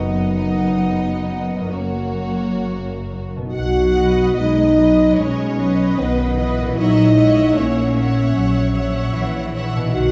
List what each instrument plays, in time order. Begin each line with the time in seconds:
Already playing: double bass section F#1, harp F#2 B3 D#4 F#4 B4, cello section F#2, french horn section B3 D#4, viola section B3, violin section D#4 D#5, flute section F#5
1.56 harp F#2
1.60 harp A#3
1.65 harp C#4
1.69 french horn section A#3 C#4, viola section A#3, harp F#4, violin section C#5
1.73 double bass section F#1, cello section F#2, violin section F#4
3.36 harp B2
3.41 harp B3
3.45 harp D#4
3.50 cello section F#3, harp F#4, french horn section F#4
3.54 double bass section B1, violin section F#5
3.96 viola section B4 D#5, violin section D#5
4.38 double bass section B1, cello section G#3, french horn section D#4, violin section D#5
4.78 cello section F#3, viola section B4 D#5, violin section D#5
5.18 double bass section B1, cello section G#3, french horn section C#4, violin section C#5
5.57 cello section F#3, viola section B4 D#5, violin section D#5
5.98 double bass section B1, cello section D#3, french horn section B3, violin section B4
6.38 cello section E3, viola section B4 D#5, violin section D#5
6.61 harp A#2
6.66 harp C#4
6.70 harp E4
6.75 double bass section A#1, harp F#4, viola section E5
6.79 cello section F#3, french horn section D#4, viola section C#5, violin section D#5 F#5
7.16 cello section G#3, viola section C#5 E5, violin section F#5
7.56 double bass section A#1, cello section A#3, french horn section C#4, violin section C#5
7.95 viola section C#5 E5, violin section F#5
8.35 double bass section A#1, cello section F#3
8.74 viola section C#5 E5, violin section F#5
9.14 double bass section A#1, cello section E3
9.54 viola section C#5 E5, violin section F#5
9.76 harp B2
9.80 harp B3
9.85 harp D#4
9.89 harp F#4
9.93 double bass section B1, cello section D#3, french horn section F#4, violin section F#5